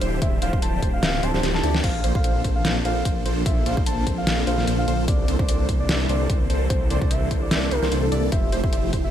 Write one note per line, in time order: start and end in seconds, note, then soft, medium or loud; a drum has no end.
0.00 0.20 D1 medium
0.00 1.80 E3 medium
0.00 1.80 F3 medium
0.00 0.19 F3 medium
0.00 5.04 C4 medium
0.00 0.19 D4 medium
0.00 0.19 E4 medium
0.00 1.80 G4 medium
0.00 0.19 G4 medium
0.00 0.19 C5 loud
0.00 closed hi-hat medium
0.22 0.40 D1 loud
0.22 0.40 F3 medium
0.22 0.40 D4 medium
0.22 0.40 E4 medium
0.22 0.40 G4 medium
0.22 0.40 C5 medium
0.22 0.36 E5 loud
0.22 kick loud
0.22 closed hi-hat medium
0.42 0.51 D1 loud
0.42 0.50 F3 loud
0.42 0.50 D4 medium
0.42 0.50 E4 medium
0.42 0.50 G4 loud
0.42 0.50 C5 loud
0.42 0.56 F5 medium
0.42 closed hi-hat medium
0.53 0.60 D1 loud
0.53 0.60 F3 loud
0.53 0.60 D4 medium
0.53 0.60 E4 medium
0.53 0.60 G4 medium
0.53 0.60 C5 loud
0.53 kick loud
0.62 0.81 D1 loud
0.62 0.80 F3 medium
0.62 0.80 D4 medium
0.62 0.80 E4 medium
0.62 0.80 G4 medium
0.62 0.80 C5 medium
0.62 0.83 A5 loud
0.62 closed hi-hat medium
0.82 1.01 D1 loud
0.82 1.01 F3 medium
0.82 1.01 D4 medium
0.82 1.01 E4 medium
0.82 1.01 G4 medium
0.82 1.01 C5 medium
0.82 kick medium
0.82 closed hi-hat medium
0.93 1.25 F5 loud
1.03 1.21 D1 medium
1.03 1.21 F3 medium
1.03 1.21 D4 medium
1.03 1.21 E4 medium
1.03 1.21 G4 medium
1.03 1.21 E5 medium
1.03 snare loud
1.03 closed hi-hat medium
1.23 1.32 D1 loud
1.23 1.31 F3 medium
1.23 1.31 D4 medium
1.23 1.31 E4 medium
1.23 1.31 G4 medium
1.23 1.31 C5 medium
1.23 1.43 A5 loud
1.23 closed hi-hat medium
1.34 1.41 D1 loud
1.34 1.41 F3 loud
1.34 1.41 D4 medium
1.34 1.41 E4 medium
1.34 1.41 G4 medium
1.34 1.41 C5 loud
1.34 snare soft
1.43 1.62 D1 medium
1.43 1.61 F3 medium
1.43 1.61 D4 medium
1.43 1.61 E4 medium
1.43 1.61 G4 medium
1.43 1.61 C5 medium
1.43 snare medium
1.43 closed hi-hat medium
1.54 1.75 A5 loud
1.54 snare medium
1.63 1.82 D2 loud
1.63 1.81 F3 loud
1.63 1.82 D4 loud
1.63 1.81 E4 loud
1.63 1.82 G4 medium
1.63 1.81 D5 loud
1.63 1.82 D5 loud
1.63 closed hi-hat medium
1.75 snare medium
1.84 2.02 A#1 loud
1.84 8.28 D3 medium
1.84 2.02 F3 medium
1.84 8.28 A#3 medium
1.84 2.02 A#3 medium
1.84 2.02 D4 medium
1.84 5.05 A4 medium
1.84 2.02 A4 medium
1.84 2.02 C5 medium
1.84 2.04 F5 loud
1.84 kick loud
1.84 closed hi-hat medium
1.84 crash medium
2.04 2.13 A#1 loud
2.04 2.12 F3 loud
2.04 2.12 A#3 medium
2.04 2.12 D4 medium
2.04 2.12 A4 medium
2.04 2.12 C5 loud
2.04 closed hi-hat medium
2.15 2.22 A4 medium
2.15 2.22 C5 loud
2.15 2.42 F5 medium
2.15 kick loud
2.24 2.43 A#1 loud
2.24 2.42 F3 medium
2.24 2.42 A#3 medium
2.24 2.42 D4 medium
2.24 2.42 A4 medium
2.24 2.42 C5 medium
2.24 closed hi-hat medium
2.44 2.63 A#1 loud
2.44 2.63 F3 medium
2.44 2.63 A#3 medium
2.44 2.63 D4 medium
2.44 2.63 A4 medium
2.44 2.63 C5 medium
2.44 kick medium
2.44 closed hi-hat medium
2.56 2.76 F5 loud
2.65 2.83 A#1 loud
2.65 2.83 F3 medium
2.65 2.83 A#3 medium
2.65 2.83 D4 medium
2.65 2.83 A4 medium
2.65 2.83 F5 medium
2.65 snare loud
2.65 closed hi-hat medium
2.85 3.03 A#1 loud
2.85 3.03 F3 loud
2.85 3.03 A#3 medium
2.85 3.03 D4 medium
2.85 3.03 A4 medium
2.85 3.03 C5 loud
2.85 3.13 F5 loud
2.85 closed hi-hat medium
3.05 3.24 A#1 medium
3.05 3.23 F3 loud
3.05 3.23 A#3 medium
3.05 3.23 C5 loud
3.05 kick loud
3.05 closed hi-hat medium
3.25 3.44 A#1 medium
3.25 3.44 F3 medium
3.25 3.44 A#3 medium
3.25 3.44 D4 medium
3.25 3.44 A4 medium
3.25 3.44 C5 loud
3.25 closed hi-hat medium
3.46 3.64 A#1 medium
3.46 3.64 F3 medium
3.46 3.64 A#3 medium
3.46 3.64 A4 medium
3.46 3.64 C5 medium
3.46 3.68 E5 loud
3.46 kick loud
3.46 closed hi-hat medium
3.66 3.75 A#1 loud
3.66 3.75 F3 loud
3.66 3.74 A#3 medium
3.66 3.74 D4 medium
3.66 3.74 A4 medium
3.66 3.74 C5 loud
3.66 3.75 C5 loud
3.66 3.80 F5 medium
3.66 closed hi-hat medium
3.77 3.85 A#1 loud
3.77 3.84 A#3 medium
3.77 3.84 D4 medium
3.77 3.84 A4 medium
3.77 3.84 C5 loud
3.77 kick loud
3.86 4.05 A#1 loud
3.86 4.04 F3 medium
3.86 4.04 A#3 medium
3.86 4.04 D4 medium
3.86 4.04 A4 medium
3.86 4.04 C5 medium
3.86 4.05 C5 medium
3.86 4.07 A5 loud
3.86 closed hi-hat medium
4.07 4.25 A#1 loud
4.07 4.25 F3 medium
4.07 4.25 A#3 medium
4.07 4.25 D4 medium
4.07 4.25 A4 medium
4.07 4.25 C5 medium
4.07 kick medium
4.07 closed hi-hat medium
4.18 4.38 F5 loud
4.27 4.45 A#1 loud
4.27 4.45 F3 medium
4.27 4.45 A#3 medium
4.27 4.45 D4 medium
4.27 4.45 A4 medium
4.27 4.45 F5 medium
4.27 snare loud
4.27 closed hi-hat medium
4.47 4.66 A#1 loud
4.47 4.65 F3 loud
4.47 4.65 A#3 medium
4.47 4.65 D4 medium
4.47 4.65 A4 medium
4.47 4.65 C5 loud
4.47 4.68 F5 medium
4.47 closed hi-hat medium
4.58 snare soft
4.67 4.86 A#1 medium
4.67 4.85 F3 loud
4.67 4.85 A#3 medium
4.67 4.85 D4 medium
4.67 4.85 A4 medium
4.67 4.85 C5 loud
4.67 4.86 C5 loud
4.67 closed hi-hat medium
4.78 4.99 F5 medium
4.88 5.09 A#1 loud
4.88 5.06 F3 medium
4.88 5.06 A#3 medium
4.88 5.06 D4 medium
4.88 5.06 A4 medium
4.88 5.06 C5 loud
4.88 closed hi-hat medium
5.08 5.26 C2 loud
5.08 5.26 E3 medium
5.08 5.26 D4 medium
5.08 9.11 E4 medium
5.08 5.26 A4 medium
5.08 8.29 A4 loud
5.08 5.26 C5 medium
5.08 5.28 D5 loud
5.08 kick loud
5.08 closed hi-hat medium
5.28 5.37 C2 loud
5.28 5.37 E3 loud
5.28 5.37 A#3 medium
5.28 5.37 D4 medium
5.28 5.37 A4 loud
5.28 5.37 C5 loud
5.28 closed hi-hat medium
5.39 5.46 E3 loud
5.39 5.46 A#3 medium
5.39 5.46 D4 medium
5.39 5.46 A4 medium
5.39 5.46 C5 loud
5.39 5.66 D5 medium
5.39 kick loud
5.48 5.67 C2 loud
5.48 5.67 E3 medium
5.48 5.67 A#3 medium
5.48 5.67 D4 medium
5.48 5.67 A4 medium
5.48 5.67 C5 medium
5.48 closed hi-hat medium
5.68 5.87 C2 loud
5.68 5.87 E3 medium
5.68 5.87 A#3 medium
5.68 5.87 D4 medium
5.68 5.87 A4 medium
5.68 5.87 C5 medium
5.68 kick medium
5.68 closed hi-hat medium
5.80 6.00 D5 loud
5.89 6.07 C2 medium
5.89 6.07 E3 medium
5.89 6.07 A#3 medium
5.89 6.07 D4 medium
5.89 6.07 A4 medium
5.89 6.07 E5 medium
5.89 snare loud
5.89 closed hi-hat medium
6.09 6.28 C2 loud
6.09 6.27 E3 loud
6.09 6.27 A#3 medium
6.09 6.27 D4 medium
6.09 6.27 A4 medium
6.09 6.27 C5 loud
6.09 6.37 D5 loud
6.09 closed hi-hat medium
6.29 6.48 C2 medium
6.29 6.48 E3 medium
6.29 6.48 A#3 medium
6.29 6.48 C5 loud
6.29 kick loud
6.29 closed hi-hat medium
6.50 6.68 C2 medium
6.50 6.68 E3 medium
6.50 6.68 A#3 medium
6.50 6.68 D4 medium
6.50 6.68 A4 medium
6.50 6.68 C5 loud
6.50 closed hi-hat medium
6.70 6.89 C2 loud
6.70 6.88 E3 medium
6.70 6.88 D4 medium
6.70 6.88 A4 medium
6.70 6.84 C5 loud
6.70 6.88 C5 medium
6.70 kick loud
6.70 closed hi-hat medium
6.90 6.99 C2 loud
6.90 6.99 E3 loud
6.90 6.99 A#3 loud
6.90 6.99 D4 medium
6.90 6.99 A4 medium
6.90 6.99 C5 loud
6.90 7.12 D5 medium
6.90 closed hi-hat medium
7.01 7.09 C2 loud
7.01 7.08 E3 loud
7.01 7.08 A#3 medium
7.01 7.08 D4 medium
7.01 7.09 A4 medium
7.01 7.09 C5 loud
7.01 kick loud
7.11 7.29 C2 loud
7.11 7.29 E3 medium
7.11 7.29 A#3 medium
7.11 7.29 D4 medium
7.11 7.29 A4 medium
7.11 7.29 C5 medium
7.11 7.31 E5 loud
7.11 closed hi-hat medium
7.31 7.49 C2 loud
7.31 7.49 E3 medium
7.31 7.49 A#3 medium
7.31 7.49 D4 medium
7.31 7.49 A4 medium
7.31 7.49 C5 medium
7.31 kick medium
7.31 closed hi-hat medium
7.42 7.73 D5 loud
7.51 7.70 C2 medium
7.51 7.69 E3 medium
7.51 7.69 A#3 medium
7.51 7.69 D4 medium
7.51 7.69 A4 medium
7.51 7.69 E5 medium
7.51 snare loud
7.51 closed hi-hat medium
7.71 7.80 C2 loud
7.71 7.80 E3 medium
7.71 7.80 A#3 medium
7.71 7.80 D4 medium
7.71 7.80 A4 medium
7.71 7.92 A#4 loud
7.71 7.80 C5 loud
7.71 7.80 C5 medium
7.71 closed hi-hat medium
7.82 7.90 C2 loud
7.82 7.89 E3 loud
7.82 7.90 A#3 medium
7.82 7.89 D4 medium
7.82 7.89 A4 medium
7.82 7.89 C5 loud
7.82 7.90 C5 loud
7.82 snare soft
7.92 8.10 C2 medium
7.92 8.10 E3 medium
7.92 8.10 A#3 medium
7.92 8.10 D4 medium
7.92 8.10 A4 medium
7.92 8.10 C5 medium
7.92 closed hi-hat medium
8.03 8.23 A4 medium
8.12 8.30 C2 medium
8.12 8.30 E3 loud
8.12 8.30 A#3 medium
8.12 8.30 D4 medium
8.12 8.30 A4 medium
8.12 8.30 D5 loud
8.12 closed hi-hat medium
8.32 8.51 F1 medium
8.32 8.50 F3 medium
8.32 9.11 F3 medium
8.32 8.50 A3 medium
8.32 9.11 A3 medium
8.32 8.50 E4 medium
8.32 8.50 G4 medium
8.32 9.11 G4 medium
8.32 8.50 C5 medium
8.32 8.53 E5 loud
8.32 kick loud
8.32 closed hi-hat medium
8.52 8.62 F1 loud
8.52 8.61 F3 loud
8.52 8.61 A3 medium
8.52 8.61 E4 medium
8.52 8.61 G4 medium
8.52 8.61 C5 loud
8.52 closed hi-hat medium
8.63 8.71 F1 loud
8.63 8.71 F3 medium
8.63 8.71 A3 medium
8.63 8.71 E4 medium
8.63 8.71 G4 medium
8.63 8.71 C5 loud
8.63 8.90 E5 medium
8.63 kick loud
8.73 8.91 F1 loud
8.73 8.91 F3 medium
8.73 8.91 A3 medium
8.73 8.91 E4 medium
8.73 8.91 G4 medium
8.73 8.91 C5 medium
8.73 closed hi-hat medium
8.93 9.11 F1 loud
8.93 9.11 F3 medium
8.93 9.11 A3 medium
8.93 9.11 E4 medium
8.93 9.11 G4 medium
8.93 9.11 C5 medium
8.93 kick medium
8.93 closed hi-hat medium
9.04 9.11 E5 loud